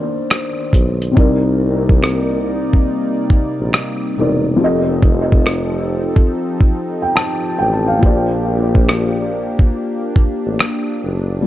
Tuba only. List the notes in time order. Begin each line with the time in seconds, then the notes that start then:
0.73 B1
1.18 C2
3.60 A#1
4.18 E1
4.61 F1
7.61 A1
8.03 A#1
10.46 A1
11.03 F#1